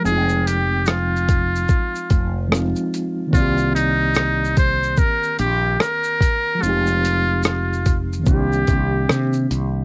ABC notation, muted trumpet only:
X:1
M:4/4
L:1/8
Q:"Swing 16ths" 1/4=73
K:Cm
V:1 name="Muted trumpet"
A G F4 z2 | F E2 c B G B2 | F2 F z G3 z |]